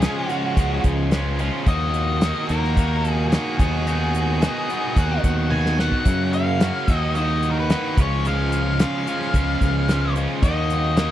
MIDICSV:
0, 0, Header, 1, 6, 480
1, 0, Start_track
1, 0, Tempo, 547445
1, 1467, Time_signature, 4, 2, 24, 8
1, 9745, End_track
2, 0, Start_track
2, 0, Title_t, "Lead electric guitar"
2, 0, Program_c, 0, 29
2, 3901, Note_on_c, 0, 75, 82
2, 4354, Note_off_c, 0, 75, 0
2, 4375, Note_on_c, 0, 78, 63
2, 4592, Note_off_c, 0, 78, 0
2, 4602, Note_on_c, 0, 78, 69
2, 4832, Note_off_c, 0, 78, 0
2, 9745, End_track
3, 0, Start_track
3, 0, Title_t, "Lead electric guitar"
3, 0, Program_c, 1, 29
3, 0, Note_on_c, 1, 68, 64
3, 240, Note_off_c, 1, 68, 0
3, 240, Note_on_c, 1, 66, 64
3, 715, Note_off_c, 1, 66, 0
3, 1471, Note_on_c, 1, 75, 94
3, 2156, Note_off_c, 1, 75, 0
3, 2168, Note_on_c, 1, 70, 79
3, 2712, Note_off_c, 1, 70, 0
3, 2712, Note_on_c, 1, 68, 79
3, 2878, Note_off_c, 1, 68, 0
3, 2882, Note_on_c, 1, 68, 73
3, 3131, Note_off_c, 1, 68, 0
3, 3142, Note_on_c, 1, 68, 69
3, 4554, Note_off_c, 1, 68, 0
3, 4826, Note_on_c, 1, 80, 84
3, 5078, Note_off_c, 1, 80, 0
3, 5086, Note_on_c, 1, 78, 75
3, 5528, Note_off_c, 1, 78, 0
3, 5557, Note_on_c, 1, 77, 80
3, 6091, Note_off_c, 1, 77, 0
3, 6091, Note_on_c, 1, 75, 80
3, 6277, Note_off_c, 1, 75, 0
3, 6277, Note_on_c, 1, 75, 73
3, 6579, Note_on_c, 1, 70, 52
3, 6583, Note_off_c, 1, 75, 0
3, 6638, Note_off_c, 1, 70, 0
3, 6656, Note_on_c, 1, 71, 69
3, 6981, Note_off_c, 1, 71, 0
3, 7023, Note_on_c, 1, 73, 62
3, 7249, Note_on_c, 1, 77, 79
3, 7255, Note_off_c, 1, 73, 0
3, 7718, Note_off_c, 1, 77, 0
3, 7729, Note_on_c, 1, 77, 73
3, 8881, Note_off_c, 1, 77, 0
3, 9146, Note_on_c, 1, 75, 78
3, 9745, Note_off_c, 1, 75, 0
3, 9745, End_track
4, 0, Start_track
4, 0, Title_t, "Overdriven electric guitar"
4, 0, Program_c, 2, 29
4, 18, Note_on_c, 2, 49, 69
4, 24, Note_on_c, 2, 53, 68
4, 25, Note_on_c, 2, 56, 71
4, 33, Note_on_c, 2, 61, 76
4, 36, Note_on_c, 2, 65, 72
4, 249, Note_off_c, 2, 49, 0
4, 254, Note_off_c, 2, 53, 0
4, 258, Note_off_c, 2, 56, 0
4, 259, Note_on_c, 2, 49, 65
4, 261, Note_off_c, 2, 61, 0
4, 265, Note_on_c, 2, 53, 64
4, 268, Note_on_c, 2, 56, 76
4, 270, Note_off_c, 2, 65, 0
4, 271, Note_on_c, 2, 61, 71
4, 280, Note_on_c, 2, 65, 74
4, 493, Note_off_c, 2, 49, 0
4, 496, Note_off_c, 2, 53, 0
4, 499, Note_off_c, 2, 56, 0
4, 504, Note_on_c, 2, 49, 84
4, 505, Note_off_c, 2, 61, 0
4, 507, Note_on_c, 2, 53, 80
4, 508, Note_off_c, 2, 65, 0
4, 510, Note_on_c, 2, 56, 78
4, 515, Note_on_c, 2, 61, 90
4, 519, Note_on_c, 2, 65, 84
4, 968, Note_off_c, 2, 49, 0
4, 979, Note_on_c, 2, 49, 60
4, 981, Note_off_c, 2, 53, 0
4, 982, Note_off_c, 2, 56, 0
4, 986, Note_off_c, 2, 61, 0
4, 990, Note_off_c, 2, 65, 0
4, 991, Note_on_c, 2, 53, 62
4, 993, Note_on_c, 2, 56, 72
4, 997, Note_on_c, 2, 61, 73
4, 1001, Note_on_c, 2, 65, 65
4, 1206, Note_off_c, 2, 49, 0
4, 1212, Note_off_c, 2, 53, 0
4, 1216, Note_off_c, 2, 56, 0
4, 1217, Note_on_c, 2, 49, 71
4, 1222, Note_on_c, 2, 53, 75
4, 1225, Note_off_c, 2, 61, 0
4, 1226, Note_off_c, 2, 65, 0
4, 1226, Note_on_c, 2, 56, 74
4, 1235, Note_on_c, 2, 61, 85
4, 1236, Note_on_c, 2, 65, 81
4, 1448, Note_off_c, 2, 49, 0
4, 1450, Note_off_c, 2, 53, 0
4, 1452, Note_off_c, 2, 56, 0
4, 1457, Note_off_c, 2, 61, 0
4, 1457, Note_off_c, 2, 65, 0
4, 1465, Note_on_c, 2, 51, 94
4, 1472, Note_on_c, 2, 58, 91
4, 1478, Note_on_c, 2, 63, 86
4, 1483, Note_on_c, 2, 66, 93
4, 1948, Note_off_c, 2, 51, 0
4, 1951, Note_off_c, 2, 58, 0
4, 1952, Note_on_c, 2, 51, 71
4, 1961, Note_off_c, 2, 63, 0
4, 1961, Note_on_c, 2, 58, 69
4, 1965, Note_on_c, 2, 63, 82
4, 1967, Note_off_c, 2, 66, 0
4, 1970, Note_on_c, 2, 66, 83
4, 2194, Note_off_c, 2, 58, 0
4, 2196, Note_off_c, 2, 51, 0
4, 2199, Note_on_c, 2, 51, 59
4, 2204, Note_off_c, 2, 63, 0
4, 2205, Note_on_c, 2, 58, 76
4, 2207, Note_on_c, 2, 63, 74
4, 2209, Note_off_c, 2, 66, 0
4, 2212, Note_on_c, 2, 66, 74
4, 2432, Note_off_c, 2, 51, 0
4, 2436, Note_off_c, 2, 58, 0
4, 2441, Note_off_c, 2, 63, 0
4, 2442, Note_on_c, 2, 51, 73
4, 2446, Note_on_c, 2, 58, 92
4, 2452, Note_on_c, 2, 63, 79
4, 2455, Note_off_c, 2, 66, 0
4, 2459, Note_on_c, 2, 66, 87
4, 2906, Note_off_c, 2, 51, 0
4, 2913, Note_off_c, 2, 58, 0
4, 2916, Note_on_c, 2, 51, 61
4, 2919, Note_off_c, 2, 63, 0
4, 2923, Note_on_c, 2, 58, 68
4, 2929, Note_off_c, 2, 66, 0
4, 2930, Note_on_c, 2, 63, 72
4, 2933, Note_on_c, 2, 66, 82
4, 3140, Note_off_c, 2, 51, 0
4, 3144, Note_off_c, 2, 58, 0
4, 3147, Note_off_c, 2, 63, 0
4, 3157, Note_on_c, 2, 51, 81
4, 3159, Note_on_c, 2, 59, 79
4, 3163, Note_on_c, 2, 63, 91
4, 3165, Note_off_c, 2, 66, 0
4, 3169, Note_on_c, 2, 66, 86
4, 3379, Note_off_c, 2, 51, 0
4, 3386, Note_off_c, 2, 59, 0
4, 3388, Note_off_c, 2, 63, 0
4, 3389, Note_on_c, 2, 51, 88
4, 3397, Note_on_c, 2, 59, 82
4, 3399, Note_on_c, 2, 63, 85
4, 3400, Note_off_c, 2, 66, 0
4, 3403, Note_on_c, 2, 66, 92
4, 3853, Note_off_c, 2, 51, 0
4, 3863, Note_off_c, 2, 63, 0
4, 3864, Note_off_c, 2, 59, 0
4, 3864, Note_on_c, 2, 51, 65
4, 3874, Note_on_c, 2, 59, 67
4, 3874, Note_on_c, 2, 63, 72
4, 3877, Note_off_c, 2, 66, 0
4, 3880, Note_on_c, 2, 66, 71
4, 4099, Note_off_c, 2, 51, 0
4, 4108, Note_off_c, 2, 59, 0
4, 4110, Note_on_c, 2, 51, 66
4, 4111, Note_off_c, 2, 63, 0
4, 4116, Note_off_c, 2, 66, 0
4, 4118, Note_on_c, 2, 59, 64
4, 4121, Note_on_c, 2, 63, 67
4, 4127, Note_on_c, 2, 66, 77
4, 4335, Note_off_c, 2, 51, 0
4, 4345, Note_off_c, 2, 59, 0
4, 4345, Note_on_c, 2, 51, 85
4, 4350, Note_off_c, 2, 63, 0
4, 4351, Note_off_c, 2, 66, 0
4, 4355, Note_on_c, 2, 59, 78
4, 4360, Note_on_c, 2, 63, 90
4, 4361, Note_on_c, 2, 66, 83
4, 4813, Note_off_c, 2, 51, 0
4, 4817, Note_off_c, 2, 59, 0
4, 4824, Note_on_c, 2, 51, 63
4, 4825, Note_off_c, 2, 66, 0
4, 4827, Note_off_c, 2, 63, 0
4, 4828, Note_on_c, 2, 59, 70
4, 4836, Note_on_c, 2, 66, 64
4, 4838, Note_on_c, 2, 63, 62
4, 5059, Note_off_c, 2, 51, 0
4, 5063, Note_off_c, 2, 59, 0
4, 5068, Note_off_c, 2, 63, 0
4, 5069, Note_on_c, 2, 51, 64
4, 5073, Note_off_c, 2, 66, 0
4, 5073, Note_on_c, 2, 59, 84
4, 5079, Note_on_c, 2, 63, 82
4, 5084, Note_on_c, 2, 66, 78
4, 5298, Note_off_c, 2, 51, 0
4, 5300, Note_off_c, 2, 59, 0
4, 5303, Note_off_c, 2, 63, 0
4, 5304, Note_on_c, 2, 42, 89
4, 5305, Note_off_c, 2, 66, 0
4, 5313, Note_on_c, 2, 49, 88
4, 5315, Note_on_c, 2, 54, 77
4, 5319, Note_on_c, 2, 58, 94
4, 5326, Note_on_c, 2, 61, 88
4, 5329, Note_on_c, 2, 66, 82
4, 5783, Note_off_c, 2, 42, 0
4, 5788, Note_off_c, 2, 49, 0
4, 5794, Note_off_c, 2, 54, 0
4, 5794, Note_on_c, 2, 42, 60
4, 5799, Note_off_c, 2, 58, 0
4, 5799, Note_on_c, 2, 49, 70
4, 5804, Note_off_c, 2, 61, 0
4, 5805, Note_on_c, 2, 54, 83
4, 5810, Note_off_c, 2, 66, 0
4, 5810, Note_on_c, 2, 58, 74
4, 5815, Note_on_c, 2, 61, 73
4, 5820, Note_on_c, 2, 66, 79
4, 6020, Note_off_c, 2, 42, 0
4, 6023, Note_off_c, 2, 49, 0
4, 6026, Note_off_c, 2, 54, 0
4, 6028, Note_off_c, 2, 58, 0
4, 6031, Note_off_c, 2, 61, 0
4, 6033, Note_off_c, 2, 66, 0
4, 6035, Note_on_c, 2, 51, 78
4, 6037, Note_on_c, 2, 58, 83
4, 6045, Note_on_c, 2, 63, 77
4, 6048, Note_on_c, 2, 66, 81
4, 6263, Note_off_c, 2, 51, 0
4, 6273, Note_off_c, 2, 58, 0
4, 6273, Note_on_c, 2, 51, 82
4, 6278, Note_off_c, 2, 63, 0
4, 6280, Note_off_c, 2, 66, 0
4, 6284, Note_on_c, 2, 58, 82
4, 6288, Note_on_c, 2, 63, 90
4, 6291, Note_on_c, 2, 66, 91
4, 6742, Note_off_c, 2, 51, 0
4, 6749, Note_off_c, 2, 58, 0
4, 6752, Note_off_c, 2, 63, 0
4, 6752, Note_on_c, 2, 51, 66
4, 6760, Note_off_c, 2, 66, 0
4, 6760, Note_on_c, 2, 58, 65
4, 6763, Note_on_c, 2, 63, 70
4, 6770, Note_on_c, 2, 66, 76
4, 6979, Note_off_c, 2, 51, 0
4, 6983, Note_off_c, 2, 58, 0
4, 6984, Note_off_c, 2, 63, 0
4, 6988, Note_off_c, 2, 66, 0
4, 6996, Note_on_c, 2, 49, 83
4, 7002, Note_on_c, 2, 53, 92
4, 7008, Note_on_c, 2, 56, 87
4, 7009, Note_on_c, 2, 61, 99
4, 7015, Note_on_c, 2, 65, 86
4, 7229, Note_off_c, 2, 49, 0
4, 7235, Note_off_c, 2, 53, 0
4, 7237, Note_off_c, 2, 56, 0
4, 7239, Note_on_c, 2, 49, 85
4, 7244, Note_off_c, 2, 61, 0
4, 7246, Note_on_c, 2, 53, 80
4, 7248, Note_on_c, 2, 56, 89
4, 7250, Note_off_c, 2, 65, 0
4, 7255, Note_on_c, 2, 61, 91
4, 7261, Note_on_c, 2, 65, 83
4, 7704, Note_off_c, 2, 49, 0
4, 7714, Note_off_c, 2, 53, 0
4, 7714, Note_on_c, 2, 49, 74
4, 7715, Note_off_c, 2, 56, 0
4, 7723, Note_off_c, 2, 61, 0
4, 7725, Note_off_c, 2, 65, 0
4, 7725, Note_on_c, 2, 53, 75
4, 7726, Note_on_c, 2, 56, 77
4, 7733, Note_on_c, 2, 61, 73
4, 7736, Note_on_c, 2, 65, 76
4, 7935, Note_off_c, 2, 49, 0
4, 7943, Note_off_c, 2, 53, 0
4, 7945, Note_on_c, 2, 49, 68
4, 7947, Note_off_c, 2, 56, 0
4, 7949, Note_off_c, 2, 61, 0
4, 7953, Note_off_c, 2, 65, 0
4, 7954, Note_on_c, 2, 53, 72
4, 7957, Note_on_c, 2, 56, 69
4, 7960, Note_on_c, 2, 61, 79
4, 7964, Note_on_c, 2, 65, 76
4, 8181, Note_off_c, 2, 49, 0
4, 8189, Note_off_c, 2, 53, 0
4, 8190, Note_off_c, 2, 56, 0
4, 8192, Note_on_c, 2, 49, 95
4, 8193, Note_off_c, 2, 61, 0
4, 8200, Note_on_c, 2, 53, 89
4, 8201, Note_off_c, 2, 65, 0
4, 8201, Note_on_c, 2, 56, 82
4, 8204, Note_on_c, 2, 61, 82
4, 8211, Note_on_c, 2, 65, 84
4, 8657, Note_off_c, 2, 49, 0
4, 8664, Note_off_c, 2, 56, 0
4, 8666, Note_off_c, 2, 53, 0
4, 8668, Note_on_c, 2, 49, 69
4, 8673, Note_off_c, 2, 61, 0
4, 8674, Note_off_c, 2, 65, 0
4, 8675, Note_on_c, 2, 56, 70
4, 8676, Note_on_c, 2, 53, 76
4, 8684, Note_on_c, 2, 61, 77
4, 8685, Note_on_c, 2, 65, 74
4, 8897, Note_off_c, 2, 49, 0
4, 8903, Note_off_c, 2, 53, 0
4, 8906, Note_off_c, 2, 56, 0
4, 8908, Note_off_c, 2, 61, 0
4, 8908, Note_on_c, 2, 49, 80
4, 8914, Note_on_c, 2, 53, 76
4, 8917, Note_on_c, 2, 56, 80
4, 8918, Note_on_c, 2, 61, 85
4, 8920, Note_off_c, 2, 65, 0
4, 8930, Note_on_c, 2, 65, 94
4, 9132, Note_off_c, 2, 49, 0
4, 9136, Note_off_c, 2, 53, 0
4, 9137, Note_off_c, 2, 56, 0
4, 9138, Note_off_c, 2, 61, 0
4, 9142, Note_on_c, 2, 51, 97
4, 9144, Note_off_c, 2, 65, 0
4, 9152, Note_on_c, 2, 58, 91
4, 9156, Note_on_c, 2, 63, 79
4, 9162, Note_on_c, 2, 66, 97
4, 9608, Note_off_c, 2, 51, 0
4, 9612, Note_off_c, 2, 58, 0
4, 9618, Note_off_c, 2, 63, 0
4, 9618, Note_on_c, 2, 51, 65
4, 9622, Note_on_c, 2, 58, 72
4, 9625, Note_off_c, 2, 66, 0
4, 9628, Note_on_c, 2, 63, 73
4, 9636, Note_on_c, 2, 66, 87
4, 9745, Note_off_c, 2, 51, 0
4, 9745, Note_off_c, 2, 58, 0
4, 9745, Note_off_c, 2, 63, 0
4, 9745, Note_off_c, 2, 66, 0
4, 9745, End_track
5, 0, Start_track
5, 0, Title_t, "Fingered electric bass"
5, 0, Program_c, 3, 33
5, 496, Note_on_c, 3, 37, 76
5, 688, Note_off_c, 3, 37, 0
5, 738, Note_on_c, 3, 37, 76
5, 1308, Note_off_c, 3, 37, 0
5, 1461, Note_on_c, 3, 39, 95
5, 2030, Note_off_c, 3, 39, 0
5, 2191, Note_on_c, 3, 39, 74
5, 2946, Note_off_c, 3, 39, 0
5, 3152, Note_on_c, 3, 39, 69
5, 3907, Note_off_c, 3, 39, 0
5, 4353, Note_on_c, 3, 39, 68
5, 4542, Note_off_c, 3, 39, 0
5, 4594, Note_on_c, 3, 39, 72
5, 5160, Note_off_c, 3, 39, 0
5, 5311, Note_on_c, 3, 42, 106
5, 5878, Note_off_c, 3, 42, 0
5, 6034, Note_on_c, 3, 39, 64
5, 6787, Note_off_c, 3, 39, 0
5, 6992, Note_on_c, 3, 37, 70
5, 7745, Note_off_c, 3, 37, 0
5, 8193, Note_on_c, 3, 37, 76
5, 8380, Note_off_c, 3, 37, 0
5, 8430, Note_on_c, 3, 37, 73
5, 8993, Note_off_c, 3, 37, 0
5, 9143, Note_on_c, 3, 39, 106
5, 9706, Note_off_c, 3, 39, 0
5, 9745, End_track
6, 0, Start_track
6, 0, Title_t, "Drums"
6, 15, Note_on_c, 9, 42, 81
6, 22, Note_on_c, 9, 38, 94
6, 103, Note_off_c, 9, 42, 0
6, 110, Note_off_c, 9, 38, 0
6, 258, Note_on_c, 9, 42, 54
6, 346, Note_off_c, 9, 42, 0
6, 498, Note_on_c, 9, 42, 67
6, 499, Note_on_c, 9, 36, 76
6, 586, Note_off_c, 9, 36, 0
6, 586, Note_off_c, 9, 42, 0
6, 735, Note_on_c, 9, 42, 50
6, 739, Note_on_c, 9, 36, 62
6, 823, Note_off_c, 9, 42, 0
6, 826, Note_off_c, 9, 36, 0
6, 976, Note_on_c, 9, 42, 58
6, 983, Note_on_c, 9, 38, 94
6, 1064, Note_off_c, 9, 42, 0
6, 1071, Note_off_c, 9, 38, 0
6, 1218, Note_on_c, 9, 42, 45
6, 1306, Note_off_c, 9, 42, 0
6, 1459, Note_on_c, 9, 42, 66
6, 1461, Note_on_c, 9, 36, 87
6, 1547, Note_off_c, 9, 42, 0
6, 1549, Note_off_c, 9, 36, 0
6, 1698, Note_on_c, 9, 42, 53
6, 1786, Note_off_c, 9, 42, 0
6, 1939, Note_on_c, 9, 42, 72
6, 1946, Note_on_c, 9, 38, 105
6, 2027, Note_off_c, 9, 42, 0
6, 2034, Note_off_c, 9, 38, 0
6, 2184, Note_on_c, 9, 42, 55
6, 2271, Note_off_c, 9, 42, 0
6, 2315, Note_on_c, 9, 38, 28
6, 2403, Note_off_c, 9, 38, 0
6, 2427, Note_on_c, 9, 36, 79
6, 2429, Note_on_c, 9, 42, 65
6, 2515, Note_off_c, 9, 36, 0
6, 2517, Note_off_c, 9, 42, 0
6, 2671, Note_on_c, 9, 42, 54
6, 2758, Note_off_c, 9, 42, 0
6, 2910, Note_on_c, 9, 42, 71
6, 2917, Note_on_c, 9, 38, 86
6, 2997, Note_off_c, 9, 42, 0
6, 3004, Note_off_c, 9, 38, 0
6, 3151, Note_on_c, 9, 36, 84
6, 3153, Note_on_c, 9, 42, 58
6, 3238, Note_off_c, 9, 36, 0
6, 3241, Note_off_c, 9, 42, 0
6, 3392, Note_on_c, 9, 42, 74
6, 3480, Note_off_c, 9, 42, 0
6, 3634, Note_on_c, 9, 42, 54
6, 3722, Note_off_c, 9, 42, 0
6, 3874, Note_on_c, 9, 42, 77
6, 3882, Note_on_c, 9, 38, 104
6, 3962, Note_off_c, 9, 42, 0
6, 3969, Note_off_c, 9, 38, 0
6, 4117, Note_on_c, 9, 42, 54
6, 4204, Note_off_c, 9, 42, 0
6, 4353, Note_on_c, 9, 36, 82
6, 4353, Note_on_c, 9, 42, 74
6, 4440, Note_off_c, 9, 36, 0
6, 4441, Note_off_c, 9, 42, 0
6, 4593, Note_on_c, 9, 36, 62
6, 4593, Note_on_c, 9, 42, 53
6, 4681, Note_off_c, 9, 36, 0
6, 4681, Note_off_c, 9, 42, 0
6, 4836, Note_on_c, 9, 48, 48
6, 4924, Note_off_c, 9, 48, 0
6, 4961, Note_on_c, 9, 38, 55
6, 5049, Note_off_c, 9, 38, 0
6, 5079, Note_on_c, 9, 38, 71
6, 5167, Note_off_c, 9, 38, 0
6, 5189, Note_on_c, 9, 43, 73
6, 5276, Note_off_c, 9, 43, 0
6, 5307, Note_on_c, 9, 42, 66
6, 5311, Note_on_c, 9, 36, 77
6, 5395, Note_off_c, 9, 42, 0
6, 5398, Note_off_c, 9, 36, 0
6, 5551, Note_on_c, 9, 42, 49
6, 5638, Note_off_c, 9, 42, 0
6, 5790, Note_on_c, 9, 42, 69
6, 5797, Note_on_c, 9, 38, 106
6, 5877, Note_off_c, 9, 42, 0
6, 5884, Note_off_c, 9, 38, 0
6, 6031, Note_on_c, 9, 36, 87
6, 6032, Note_on_c, 9, 42, 55
6, 6119, Note_off_c, 9, 36, 0
6, 6119, Note_off_c, 9, 42, 0
6, 6269, Note_on_c, 9, 42, 60
6, 6357, Note_off_c, 9, 42, 0
6, 6510, Note_on_c, 9, 42, 53
6, 6598, Note_off_c, 9, 42, 0
6, 6748, Note_on_c, 9, 42, 69
6, 6755, Note_on_c, 9, 38, 94
6, 6836, Note_off_c, 9, 42, 0
6, 6843, Note_off_c, 9, 38, 0
6, 6992, Note_on_c, 9, 36, 94
6, 6993, Note_on_c, 9, 42, 57
6, 7079, Note_off_c, 9, 36, 0
6, 7080, Note_off_c, 9, 42, 0
6, 7233, Note_on_c, 9, 42, 73
6, 7321, Note_off_c, 9, 42, 0
6, 7471, Note_on_c, 9, 42, 55
6, 7559, Note_off_c, 9, 42, 0
6, 7710, Note_on_c, 9, 42, 83
6, 7717, Note_on_c, 9, 38, 108
6, 7798, Note_off_c, 9, 42, 0
6, 7805, Note_off_c, 9, 38, 0
6, 7954, Note_on_c, 9, 42, 60
6, 8041, Note_off_c, 9, 42, 0
6, 8078, Note_on_c, 9, 38, 28
6, 8166, Note_off_c, 9, 38, 0
6, 8189, Note_on_c, 9, 36, 83
6, 8190, Note_on_c, 9, 42, 70
6, 8277, Note_off_c, 9, 36, 0
6, 8278, Note_off_c, 9, 42, 0
6, 8427, Note_on_c, 9, 36, 59
6, 8431, Note_on_c, 9, 42, 52
6, 8515, Note_off_c, 9, 36, 0
6, 8519, Note_off_c, 9, 42, 0
6, 8667, Note_on_c, 9, 42, 68
6, 8674, Note_on_c, 9, 38, 84
6, 8755, Note_off_c, 9, 42, 0
6, 8762, Note_off_c, 9, 38, 0
6, 8905, Note_on_c, 9, 42, 54
6, 8992, Note_off_c, 9, 42, 0
6, 9141, Note_on_c, 9, 36, 85
6, 9141, Note_on_c, 9, 42, 70
6, 9229, Note_off_c, 9, 36, 0
6, 9229, Note_off_c, 9, 42, 0
6, 9382, Note_on_c, 9, 42, 51
6, 9470, Note_off_c, 9, 42, 0
6, 9616, Note_on_c, 9, 42, 66
6, 9623, Note_on_c, 9, 38, 102
6, 9703, Note_off_c, 9, 42, 0
6, 9710, Note_off_c, 9, 38, 0
6, 9745, End_track
0, 0, End_of_file